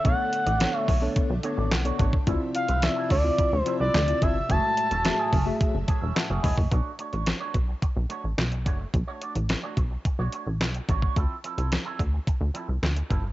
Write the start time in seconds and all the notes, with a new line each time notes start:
Already playing: D3 A3 D4
0.04 B1 A3 B3 D4 F#4 A4 C#5 F#5, kick, closed hi-hat
0.18 muted clean electric guitar stroke
0.32 muted clean electric guitar stroke, closed hi-hat
0.46 A1 A3 D4 F#4 D5, closed hi-hat
0.60 B3 D4 A4 C#5, muted clean electric guitar stroke, snare, clap, closed hi-hat
0.74 A3 D4 F#4 C#5
0.80 E5
0.88 B1 A3 D4 F#4 C#5, kick, open hi-hat
1.02 B3 D4 A4 C#5, muted clean electric guitar stroke
1.15 muted clean electric guitar stroke, kick, closed hi-hat
1.30 B1, muted clean electric guitar stroke
1.43 A3 B3 D4 F#4 A4 C#5, closed hi-hat
1.57 A1 A3 D4 F#4 D5
1.71 B1 F#5, muted clean electric guitar stroke, snare, clap, closed hi-hat
1.85 A3 B3 D4 F#4 A4 C#5, closed hi-hat
1.99 A1 A3 D4 F#4 C#5 A5, kick, closed hi-hat
2.13 muted clean electric guitar stroke, kick
2.27 D2 C3 F3 C4 E4 F4 A4 D5 E5, kick, closed hi-hat
2.41 muted clean electric guitar stroke
2.55 F5, muted clean electric guitar stroke, closed hi-hat
2.69 C2 F3 C4 E4 B4, closed hi-hat
2.82 C4 E4 F4 D5 E5, muted clean electric guitar stroke, snare, clap, closed hi-hat
2.96 F3 C4 E4 A4
3.10 D2 F3 C4 E4 A4 D5, kick, open hi-hat
3.24 C4 E4 F4 D5, muted clean electric guitar stroke
3.38 muted clean electric guitar stroke, kick, closed hi-hat
3.52 D2, muted clean electric guitar stroke
3.60 C5
3.66 F3 C4 E4 F4 A4 D5, closed hi-hat
3.80 C2 F3 C4 E4 B4 D5
3.94 D2, muted clean electric guitar stroke, snare, clap, closed hi-hat
4.07 C4 E4 F4 D5, muted clean electric guitar stroke, closed hi-hat
4.21 G1 F3 C4 E4 A4 E5, kick, closed hi-hat
4.36 muted clean electric guitar stroke
4.49 F#1 A2 E3 F#3 G#3 A3 C#4 F#4 G#4 E5 A5, kick, closed hi-hat
4.63 muted clean electric guitar stroke
4.77 muted clean electric guitar stroke, closed hi-hat
4.91 E1 E3 A3 C#4 A4, closed hi-hat
5.05 A3 F#4 G#4 E5, muted clean electric guitar stroke, snare, clap, closed hi-hat
5.19 E3 A3 C#4 G#4
5.32 F#1 E3 A3 C#4 G#4, kick, open hi-hat
5.46 A3 F#4 G#4 E5, muted clean electric guitar stroke
5.60 muted clean electric guitar stroke, kick, closed hi-hat
5.74 F#1, muted clean electric guitar stroke
5.87 E3 A3 C#4 G#4 A5, kick, closed hi-hat
6.01 E1 E3 A3 C#4 A4
6.15 E5 F#5 A5, muted clean electric guitar stroke, snare, clap, closed hi-hat
6.29 F#1 E3 A3 C#4 G#4
6.43 E1 E3 A3 C#4 G#4 D#5 F#5 B5, kick, open hi-hat
6.57 F#1 G#5 C#6, muted clean electric guitar stroke, kick
6.71 B1 A3 D4 F#4 C#5, kick, closed hi-hat
6.99 A3 D4 F#4 C#5, closed hi-hat
7.13 A1 A3 D4 F#4 C#5, closed hi-hat
7.26 muted clean electric guitar stroke, snare, clap, closed hi-hat
7.40 A3 D4 F#4 C#5
7.55 B1, muted clean electric guitar stroke, kick, closed hi-hat
7.68 muted clean electric guitar stroke
7.82 muted clean electric guitar stroke, kick, closed hi-hat
7.96 B1, muted clean electric guitar stroke
8.10 A3 D4 F#4 C#5, closed hi-hat
8.24 A1, muted clean electric guitar stroke
8.38 B1, snare, clap, closed hi-hat
8.52 muted clean electric guitar stroke, closed hi-hat
8.66 F#1 A3 D4 F#4 C#5, kick, closed hi-hat
8.80 muted clean electric guitar stroke
8.94 B1, muted clean electric guitar stroke, kick, closed hi-hat
9.08 A3 D4 F#4 C#5
9.21 A3 D4 F#4 D5, closed hi-hat
9.35 A1, muted clean electric guitar stroke, closed hi-hat
9.49 muted clean electric guitar stroke, snare, clap, closed hi-hat
9.63 A3 D4 F#4 C#5
9.77 B1, muted clean electric guitar stroke, kick, closed hi-hat
9.91 muted clean electric guitar stroke
10.05 muted clean electric guitar stroke, kick, closed hi-hat
10.19 B1 A3 D4 F#4 C#5
10.32 A3 D4 F#4 C#5, closed hi-hat
10.46 A1, muted clean electric guitar stroke
10.60 B1, muted clean electric guitar stroke, snare, clap, closed hi-hat
10.74 muted clean electric guitar stroke, closed hi-hat
10.88 A1 A3 D4 F#4 C#5, kick, closed hi-hat
11.02 A3 D4 F#4 C#5, kick
11.16 D2 F3 C4 E4 A4, kick, closed hi-hat
11.44 F3 C4 E4 A4, closed hi-hat
11.58 C2 F3 C4 E4 A4, closed hi-hat
11.72 muted clean electric guitar stroke, snare, clap, closed hi-hat
11.85 F3 C4 E4 A4
11.99 D2, muted clean electric guitar stroke, kick, closed hi-hat
12.13 muted clean electric guitar stroke
12.27 muted clean electric guitar stroke, kick, closed hi-hat
12.41 D2, muted clean electric guitar stroke
12.54 F3 C4 E4 A4, closed hi-hat
12.69 C2, muted clean electric guitar stroke
12.83 D2, snare, clap, closed hi-hat
12.96 muted clean electric guitar stroke, closed hi-hat
13.10 G1 F3 C4 E4 A4, kick, closed hi-hat
13.24 muted clean electric guitar stroke